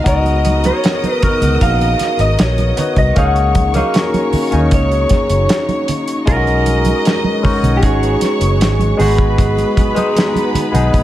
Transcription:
Already playing: string section F#4
0.04 fingered electric bass C#2, string section C#3 B3 D#4 A#4, tine electric piano B3 D#4 F#4 A#4, violin section D#5 D#6, clean electric guitar D#5, kick, closed hi-hat
0.25 closed hi-hat, muted conga
0.45 closed hi-hat, high conga
0.64 clean electric guitar C#5, closed hi-hat, high conga
0.84 snare, closed hi-hat, muted conga
1.03 closed hi-hat, high conga
1.12 clean electric guitar B4
1.20 tine electric piano B3 D#4 F#4 A#4, clean electric guitar A#4, muted fingered electric bass stroke, kick, closed hi-hat, low conga
1.41 fingered electric bass C#2, closed hi-hat, low conga
1.61 fingered electric bass A#1, clean electric guitar F5, kick, closed hi-hat, muted conga
1.81 closed hi-hat, muted conga
1.99 snare, closed hi-hat, high conga
2.19 fingered electric bass G#1, clean electric guitar D#5, closed hi-hat
2.39 fingered electric bass A#1, clean electric guitar C#5, snare, closed hi-hat
2.58 closed hi-hat, muted conga, high conga
2.76 tine electric piano B3 D#4 F#4 B4, closed hi-hat, low conga
2.96 fingered electric bass C2, clean electric guitar D#5, kick, closed hi-hat
3.15 fingered electric bass C#2, string section F#3 A#3, tine electric piano A#3 C#4 D#4 G#4, violin section C#5 C#6, clean electric guitar F#5, kick, closed hi-hat, muted conga
3.36 closed hi-hat
3.55 kick, closed hi-hat, high conga
3.74 tine electric piano A#3 C#4 D#4, clean electric guitar F5, closed hi-hat, high conga
3.78 tine electric piano F#4
3.94 clean electric guitar A#4, snare, closed hi-hat, muted conga
4.14 closed hi-hat, muted conga, high conga
4.33 muted fingered electric bass stroke, open hi-hat, low conga
4.51 fingered electric bass D#2, tine electric piano A#3 C#4 D#4 G#4, closed hi-hat, low conga
4.71 fingered electric bass C#2, clean electric guitar C#5, kick, closed hi-hat, muted conga
4.92 closed hi-hat
5.09 kick, snare, closed hi-hat, high conga
5.30 fingered electric bass F#1, closed hi-hat
5.49 snare, closed hi-hat
5.69 closed hi-hat, muted conga, high conga
5.88 closed hi-hat, low conga
6.08 closed hi-hat
6.26 fingered electric bass B1, tine electric piano G#3 C#4 D#4 F4, string section G#3 B3, clean electric guitar A#4, violin section D#5 D#6, kick, closed hi-hat, muted conga
6.36 tine electric piano F#4
6.46 closed hi-hat, muted conga
6.66 closed hi-hat, high conga
6.85 closed hi-hat, high conga
7.05 snare, closed hi-hat
7.24 muted conga, high conga
7.42 tine electric piano G#3 C#4 D#4 F#4, muted fingered electric bass stroke, kick, open hi-hat, low conga
7.63 fingered electric bass B1, closed hi-hat, low conga
7.77 clean electric guitar G4
7.82 fingered electric bass G#1, clean electric guitar G#4, violin section C#5 C#6, kick, closed hi-hat
8.02 closed hi-hat, muted conga
8.21 snare, closed hi-hat, high conga
8.41 fingered electric bass F#1, closed hi-hat
8.60 fingered electric bass G#1, snare, closed hi-hat, muted conga
8.79 closed hi-hat, muted conga, high conga
8.97 fingered electric bass G#1, string section F#3 B3 G#4, tine electric piano G#3 B3 D#4 F#4, clean electric guitar G#4, violin section B4 B5, open hi-hat, low conga
9.18 kick
9.38 kick, closed hi-hat, muted conga
9.57 closed hi-hat, muted conga
9.77 kick, closed hi-hat, high conga
9.95 tine electric piano G#3 B3 D#4 G#4, closed hi-hat, high conga
10.16 snare, closed hi-hat, muted conga
10.35 closed hi-hat, muted conga, high conga
10.54 muted fingered electric bass stroke, closed hi-hat, low conga
10.72 fingered electric bass B1, tine electric piano G#3 B3 D#4 G#4, closed hi-hat, low conga
10.93 fingered electric bass A#1, kick, closed hi-hat, muted conga

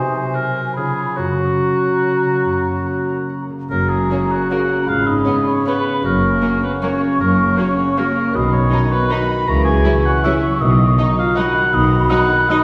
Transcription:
Already playing: bassoon C3, harp C3 G#3 D#4 G#4, clarinet F#4, oboe C5, flute section G#5
0.15 harp F#3
0.35 harp F#4, oboe A#4
0.55 harp G#4
0.75 harp C#3, bassoon C#3, clarinet F4, oboe G#4, flute section B5
0.97 harp F4 C#5
1.16 harp F#2, bassoon F#3, oboe F#4, clarinet F#4, flute section A#5
1.38 harp C#3
1.59 harp F#4
1.82 harp A#4
2.25 harp C#3
2.45 harp F#2
2.65 harp A#3
2.86 harp F#4
3.08 harp A#4
3.29 harp F#4
3.50 harp C#3
3.69 double bass section F#1, cello section F#2, harp F#2, bassoon C#3, french horn section A#3, clarinet F#4, oboe A#4, flute section A#5
3.89 french horn section G#3, harp A#3, oboe G#4
4.09 viola section C#3, violin section A#3 C#4, harp C#5
4.30 french horn section F#3, oboe F#4, harp A#4
4.50 viola section C#3, violin section A#3 C#4, french horn section F#4, harp C#5, oboe F#5
4.70 harp C#4
4.86 double bass section G#1, cello section G#2, harp G#2, french horn section F4, clarinet G#4, oboe F5, flute section B5
5.06 harp B3, french horn section D#4, oboe D#5
5.25 viola section C#3, violin section B3 C#4, harp C#5
5.46 french horn section C#4, harp B4, oboe C#5
5.65 viola section C#3, french horn section B3, violin section B3 C#4, oboe B4, harp C#5
5.85 harp C#4
6.02 double bass section F#1, harp F#2, cello section F#2, bassoon C#3, french horn section A#3, clarinet F#4, oboe A#4, flute section C#6
6.22 harp A#3
6.42 viola section F#3, violin section A#3 C#4, harp C#5
6.63 french horn section B3, oboe B4, harp F#5
6.82 viola section F#3, violin section A#3 C#4, french horn section C#4, harp C#5, oboe C#5
7.00 harp F#4
7.19 double bass section F#1, cello section F#2, harp F#2, french horn section A#3, oboe A#4
7.38 harp A#3
7.57 viola section F#3, violin section A#3 C#4, french horn section C#4, oboe C#5, harp C#5
7.78 harp F#5
7.97 viola section F#3, violin section A#3 C#4, french horn section A#3, oboe A#4, harp C#5
8.16 harp F#4
8.34 double bass section B1, harp B2, cello section B2, bassoon D#3, french horn section D#4, clarinet F#4, oboe D#5, flute section B5
8.52 harp F#3, french horn section C#4, oboe C#5
8.71 viola section F#3, violin section D#4, harp D#5
8.92 french horn section B3, oboe B4, harp F#5
9.11 viola section F#3, violin section D#4, french horn section B4, harp D#5, oboe B5
9.30 harp F#4
9.47 double bass section C#2, harp C#3, cello section C#3, bassoon E3, french horn section A#4, oboe A#5, flute section C#6
9.64 harp F#3, french horn section G#4, oboe G#5
9.85 viola section F#3, violin section C#4 E4, harp E5
10.05 french horn section F#4, harp F#5, oboe F#5
10.23 viola section F#3, violin section C#4 E4, french horn section E4, oboe E5, harp E5
10.43 harp F#4
10.60 double bass section B1, cello section B2, harp B2, bassoon D#3, french horn section D#4, clarinet F#4, oboe D#5
10.79 harp F#3
10.98 viola section F#3, violin section D#4, harp D#5
11.18 french horn section F4, harp F#4, oboe F5
11.36 viola section F#3, violin section D#4, french horn section F#4, harp D#5, oboe F#5, flute section B5
11.56 harp D#4
11.73 double bass section B1, cello section B2, harp B2, french horn section D#4, oboe D#5
11.92 harp F#3
12.10 viola section F#3, violin section D#4, french horn section F#4, harp D#5, oboe F#5
12.31 harp F#4
12.49 viola section F#3, violin section D#4, french horn section D#4, oboe D#5, harp D#5

